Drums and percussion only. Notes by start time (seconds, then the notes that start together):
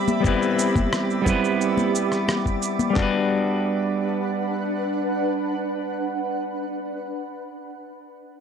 0.08 high conga, shaker
0.24 kick, shaker
0.42 shaker
0.59 shaker
0.76 kick, high conga, shaker
0.93 cross-stick, shaker
1.10 shaker
1.26 kick, low conga, shaker
1.45 shaker
1.61 shaker
1.77 high conga, shaker
1.95 shaker
2.12 cross-stick, shaker
2.28 cross-stick, high conga, shaker
2.46 kick, shaker
2.63 shaker
2.79 high conga, shaker
2.96 kick, snare, clap